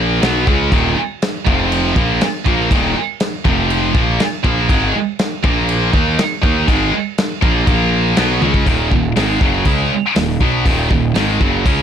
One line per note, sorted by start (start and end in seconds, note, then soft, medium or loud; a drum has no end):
0.00 0.19 A#1 medium
0.00 0.22 A#2 medium
0.00 0.22 F3 loud
0.00 0.22 A#3 loud
0.23 0.45 B1 medium
0.23 0.46 B2 medium
0.23 0.47 F#3 medium
0.23 0.47 B3 medium
0.23 snare loud
0.23 crash medium
0.47 0.70 C#2 loud
0.47 0.71 C#3 medium
0.47 0.71 G#3 medium
0.47 0.72 C#4 loud
0.47 kick loud
0.72 0.95 D#1 medium
0.72 0.96 D#2 medium
0.72 0.96 A#2 loud
0.72 0.97 D#3 loud
0.72 kick loud
0.72 crash medium
0.97 muted picked electric bass stroke soft
0.97 muted distorted electric guitar stroke medium
1.22 snare loud
1.22 crash medium
1.47 1.93 F1 loud
1.47 1.95 F2 medium
1.47 1.96 C3 medium
1.47 1.96 F3 loud
1.47 kick loud
1.72 crash medium
1.96 2.19 A#1 loud
1.96 2.20 A#2 medium
1.96 2.21 F3 medium
1.96 2.21 A#3 loud
1.96 kick loud
2.21 snare loud
2.21 crash medium
2.46 2.69 A#1 loud
2.46 2.70 A#2 medium
2.46 2.71 F3 medium
2.46 2.71 A#3 loud
2.46 kick loud
2.70 2.94 D#1 medium
2.70 2.94 D#2 medium
2.70 2.95 A#2 loud
2.70 2.95 D#3 loud
2.70 kick loud
2.70 crash medium
2.96 muted distorted electric guitar stroke medium
2.96 muted picked electric bass stroke soft
3.20 snare loud
3.20 crash medium
3.45 3.91 F1 loud
3.45 3.94 F2 medium
3.45 3.94 C3 medium
3.45 3.94 F3 loud
3.45 kick loud
3.70 crash medium
3.94 4.18 A#1 medium
3.94 4.18 A#2 medium
3.94 4.19 F3 medium
3.94 4.19 A#3 medium
3.94 kick loud
4.20 snare loud
4.20 crash medium
4.44 4.67 A#1 loud
4.44 4.68 A#2 medium
4.44 4.69 F3 loud
4.44 4.69 A#3 loud
4.44 kick loud
4.69 4.92 G#1 medium
4.69 4.93 G#2 medium
4.69 4.93 D#3 loud
4.69 4.94 G#3 loud
4.69 kick loud
4.69 crash medium
4.94 muted distorted electric guitar stroke medium
4.94 muted picked electric bass stroke soft
5.19 snare loud
5.19 crash medium
5.44 5.90 A#1 loud
5.44 5.92 A#2 medium
5.44 5.93 F3 loud
5.44 5.93 A#3 medium
5.44 kick loud
5.69 crash medium
5.93 6.17 D#2 loud
5.93 6.17 D#3 medium
5.93 6.18 A#3 loud
5.93 6.18 D#4 medium
5.93 kick loud
6.19 snare loud
6.19 crash medium
6.42 6.66 D#2 loud
6.42 6.67 D#3 loud
6.42 6.67 A#3 loud
6.42 6.67 D#4 loud
6.42 kick loud
6.67 6.91 G#1 loud
6.67 6.91 G#2 loud
6.67 6.92 D#3 loud
6.67 6.92 G#3 loud
6.67 kick medium
6.67 crash medium
6.93 muted distorted electric guitar stroke medium
6.93 muted picked electric bass stroke soft
7.18 snare loud
7.18 crash medium
7.41 7.66 A#1 loud
7.41 7.65 A#2 loud
7.41 7.66 F3 loud
7.41 7.67 A#3 loud
7.41 kick loud
7.66 8.14 A#1 loud
7.66 8.16 A#2 medium
7.66 8.16 F3 loud
7.66 8.17 A#3 loud
7.66 kick loud
7.66 crash medium
8.16 8.40 B1 medium
8.16 8.41 B2 loud
8.16 8.41 F#3 loud
8.16 8.42 B3 loud
8.16 snare loud
8.16 crash medium
8.41 8.65 C#2 medium
8.41 8.66 C#3 loud
8.41 8.66 G#3 loud
8.41 8.66 C#4 medium
8.41 high tom medium
8.54 kick medium
8.66 8.90 D#1 medium
8.66 8.90 D#2 medium
8.66 8.90 A#2 medium
8.66 8.91 D#3 medium
8.66 kick medium
8.66 open hi-hat soft
8.91 9.15 D#1 medium
8.91 9.11 D#2 medium
8.91 9.11 A#2 medium
8.91 kick medium
9.16 9.39 G#1 medium
9.16 9.40 G#2 medium
9.16 9.41 D#3 medium
9.16 9.41 G#3 loud
9.16 snare loud
9.16 open hi-hat soft
9.41 9.64 F#1 medium
9.41 9.65 F#2 medium
9.41 9.64 C#3 medium
9.41 9.66 F#3 medium
9.41 kick loud
9.65 9.89 C#2 loud
9.65 9.90 C#3 medium
9.65 9.90 G#3 loud
9.65 9.91 C#4 medium
9.65 kick medium
9.65 open hi-hat soft
10.16 10.40 D#1 medium
10.16 10.36 D#2 medium
10.16 10.36 A#2 medium
10.16 snare loud
10.16 open hi-hat medium
10.41 10.64 B1 medium
10.41 10.65 B2 medium
10.41 10.65 F#3 loud
10.41 10.66 B3 medium
10.41 kick loud
10.66 10.89 D#1 medium
10.66 10.89 D#2 medium
10.66 10.90 A#2 medium
10.66 10.91 D#3 loud
10.66 kick medium
10.66 open hi-hat medium
10.91 11.14 D#1 medium
10.91 11.11 D#2 medium
10.91 11.11 A#2 medium
10.91 kick medium
11.15 11.39 G#1 medium
11.15 11.40 G#2 medium
11.15 11.41 D#3 medium
11.15 11.41 G#3 medium
11.15 snare loud
11.15 open hi-hat medium
11.41 11.64 F#1 loud
11.41 11.65 F#2 medium
11.41 11.64 C#3 medium
11.41 11.66 F#3 medium
11.41 kick loud
11.66 11.82 C#2 medium
11.66 11.82 C#3 medium
11.66 11.82 G#3 medium
11.66 11.82 C#4 loud
11.66 kick loud
11.66 open hi-hat medium